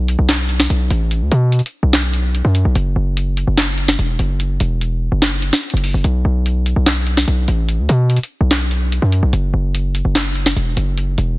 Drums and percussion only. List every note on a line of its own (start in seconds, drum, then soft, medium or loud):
0.08 closed hi-hat medium
0.29 snare loud
0.29 clap medium
0.29 closed hi-hat medium
0.49 closed hi-hat medium
0.60 snare medium
0.70 closed hi-hat medium
0.90 closed hi-hat medium
1.11 closed hi-hat medium
1.32 closed hi-hat medium
1.52 closed hi-hat medium
1.59 closed hi-hat medium
1.66 closed hi-hat medium
1.93 snare loud
1.93 clap medium
1.93 closed hi-hat medium
2.13 closed hi-hat medium
2.35 closed hi-hat medium
2.55 closed hi-hat medium
2.75 closed hi-hat medium
3.17 closed hi-hat medium
3.37 closed hi-hat medium
3.57 snare loud
3.57 clap medium
3.57 closed hi-hat medium
3.78 closed hi-hat medium
3.88 snare medium
3.99 closed hi-hat medium
4.19 closed hi-hat medium
4.40 closed hi-hat medium
4.60 closed hi-hat medium
4.81 closed hi-hat medium
5.22 snare loud
5.22 clap medium
5.22 closed hi-hat medium
5.42 closed hi-hat medium
5.53 snare medium
5.63 closed hi-hat soft
5.70 closed hi-hat medium
5.77 closed hi-hat medium
5.84 open hi-hat medium
6.04 closed hi-hat medium
6.46 closed hi-hat medium
6.66 closed hi-hat medium
6.86 snare loud
6.86 clap medium
6.86 closed hi-hat medium
7.07 closed hi-hat medium
7.17 snare medium
7.28 closed hi-hat medium
7.48 closed hi-hat medium
7.69 closed hi-hat medium
7.89 closed hi-hat medium
8.10 closed hi-hat medium
8.17 closed hi-hat medium
8.23 closed hi-hat medium
8.51 snare loud
8.51 clap medium
8.51 closed hi-hat medium
8.71 closed hi-hat medium
8.92 closed hi-hat medium
9.12 closed hi-hat medium
9.33 closed hi-hat medium
9.75 closed hi-hat medium
9.95 closed hi-hat medium
10.15 snare loud
10.15 clap medium
10.15 closed hi-hat medium
10.35 closed hi-hat medium
10.46 snare medium
10.57 closed hi-hat medium
10.77 closed hi-hat medium
10.98 closed hi-hat medium
11.18 closed hi-hat medium